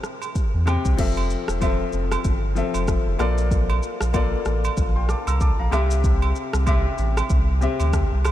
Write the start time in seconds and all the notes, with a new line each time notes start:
Already playing: C3 C4 G4 A#4 E5
0.04 cross-stick, shaker
0.22 high agogo, shaker
0.35 kick, shaker
0.54 E2
0.66 C3 C4 G4 G5, cross-stick, high agogo, shaker
0.85 C2, kick, shaker
0.97 F1 F3 C4 A4 E5, kick, crash, shaker
1.17 high agogo
1.30 shaker
1.48 E1, cross-stick, shaker
1.61 F3 C4 A4 E5, kick, high agogo, shaker
1.93 F1, shaker
2.12 cross-stick, high agogo, shaker
2.24 G1, kick, shaker
2.55 F3 C4 A4 E5, shaker
2.74 F1, high agogo, shaker
2.88 kick, cross-stick, shaker
3.06 F1
3.19 A#1 A#3 F4 A4 D5, cross-stick, high agogo, shaker
3.38 shaker
3.51 kick, shaker
3.70 high agogo
3.83 shaker
4.01 A#1, cross-stick, shaker
4.13 A#3 F4 A4 D5, kick, high agogo, shaker
4.45 A1, cross-stick, shaker
4.65 high agogo, shaker
4.77 A#1, kick, shaker
4.96 G5 C6
5.09 A5 D6, cross-stick, shaker
5.27 C2 A#5 E6, high agogo, shaker
5.41 A5 D6, kick, shaker
5.59 A#1 F5 A#5
5.71 C2 C3 C4 G4 E5, cross-stick, high agogo, shaker
5.91 shaker
6.04 kick, shaker
6.22 high agogo
6.36 shaker
6.53 C2, cross-stick, shaker
6.66 C3 C4 G4 E5, kick, high agogo, shaker
6.98 A1, shaker
7.17 cross-stick, high agogo, shaker
7.30 C2, kick, shaker
7.61 C3 C4 G4 E5, shaker
7.80 D2, high agogo, shaker
7.93 kick, cross-stick, shaker
8.12 C2
8.25 cross-stick, high agogo, shaker